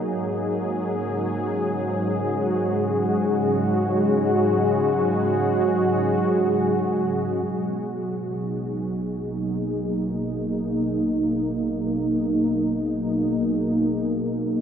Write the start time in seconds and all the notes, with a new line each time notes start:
Already playing: F#3 A#3 D#4 G#4
0.10 G#2
0.93 C#3
1.68 G#3
2.18 F#4
7.46 G#1 B2
8.31 D#4
9.19 A#3